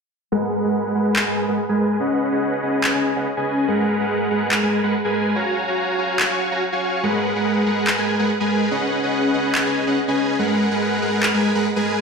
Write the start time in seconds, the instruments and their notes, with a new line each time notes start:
0.32 supersaw synth G#3 G#4 A#4 B4 F#5
0.64 supersaw synth G#3 G#4 A#4 B4 F#5
0.95 supersaw synth G#3 G#4 A#4 B4 F#5
1.16 clap
1.27 supersaw synth G#3 G#4 A#4 B4 G#5
1.48 supersaw synth G#3 G#4 A#4 B4 F#5
1.69 supersaw synth G#3 G#4 A#4 B4 G#5
2.00 supersaw synth C#4 G#4 B4 D#5 F#5
2.32 supersaw synth C#4 G#4 B4 D#5 F#5
2.63 supersaw synth C#4 G#4 B4 D#5 F#5
2.84 clap
2.95 supersaw synth C#4 G#4 B4 D#5 G#5
3.16 supersaw synth C#4 G#4 B4 D#5 F#5
3.37 supersaw synth C#4 G#4 B4 D#5 G#5
3.68 supersaw synth G#3 G#4 A#4 B4 F#5
4.00 supersaw synth G#3 G#4 A#4 B4 F#5
4.31 supersaw synth G#3 G#4 A#4 B4 F#5
4.51 clap
4.63 supersaw synth G#3 G#4 A#4 B4 G#5
4.84 supersaw synth G#3 G#4 A#4 B4 F#5
5.05 supersaw synth G#3 G#4 A#4 B4 G#5
5.35 supersaw synth F#4 C#5 F5 G#5 A#5
5.68 supersaw synth F#4 C#5 F5 G#5 A#5
5.98 supersaw synth F#4 C#5 F5 G#5 A#5
6.19 clap
6.30 supersaw synth F#4 C#5 F5 G#5 C#6
6.51 supersaw synth F#4 C#5 F5 G#5 A#5
6.72 supersaw synth F#4 C#5 F5 G#5 C#6
7.03 supersaw synth G#3 G#4 A#4 B4 F#5
7.35 supersaw synth G#3 G#4 A#4 B4 F#5
7.66 supersaw synth G#3 G#4 A#4 B4 F#5
7.87 clap
7.98 supersaw synth G#3 G#4 A#4 B4 G#5
8.19 supersaw synth G#3 G#4 A#4 B4 F#5
8.40 supersaw synth G#3 G#4 A#4 B4 G#5
8.71 supersaw synth C#4 G#4 B4 D#5 F#5
9.03 supersaw synth C#4 G#4 B4 D#5 F#5
9.34 supersaw synth C#4 G#4 B4 D#5 F#5
9.55 clap
9.66 supersaw synth C#4 G#4 B4 D#5 G#5
9.87 supersaw synth C#4 G#4 B4 D#5 F#5
10.08 supersaw synth C#4 G#4 B4 D#5 G#5
10.39 supersaw synth G#3 G#4 A#4 B4 F#5
10.71 supersaw synth G#3 G#4 A#4 B4 F#5
11.02 supersaw synth G#3 G#4 A#4 B4 F#5
11.23 clap
11.34 supersaw synth G#3 G#4 A#4 B4 G#5
11.55 supersaw synth G#3 G#4 A#4 B4 F#5
11.76 supersaw synth G#3 G#4 A#4 B4 G#5